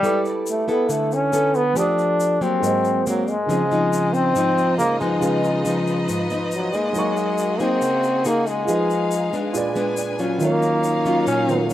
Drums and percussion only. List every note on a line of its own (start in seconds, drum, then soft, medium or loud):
0.04 shaker medium
0.25 shaker soft
0.46 shaker medium
0.68 shaker soft
0.90 shaker medium
1.12 shaker soft
1.33 shaker medium
1.55 shaker soft
1.76 shaker medium
1.98 shaker soft
2.20 shaker medium
2.42 shaker soft
2.64 shaker medium
2.85 shaker soft
3.07 shaker medium
3.28 shaker soft
3.50 shaker medium
3.72 shaker soft
3.93 shaker medium
4.14 shaker soft
4.36 shaker medium
4.58 shaker soft
4.79 shaker medium
5.01 shaker soft
5.22 shaker medium
5.44 shaker soft
5.65 shaker medium
5.87 shaker soft
6.09 shaker medium
6.30 shaker soft
6.51 shaker medium
6.73 shaker soft
6.95 shaker medium
7.17 shaker soft
7.38 shaker medium
7.60 shaker soft
7.82 shaker medium
8.03 shaker soft
8.25 shaker medium
8.47 shaker soft
8.68 shaker medium
8.90 shaker soft
9.11 shaker medium
9.33 shaker soft
9.55 shaker medium
9.76 shaker soft
9.97 shaker medium
10.19 shaker soft
10.40 shaker medium
10.62 shaker soft
10.84 shaker medium
11.06 shaker soft
11.27 shaker medium
11.49 shaker soft
11.70 shaker medium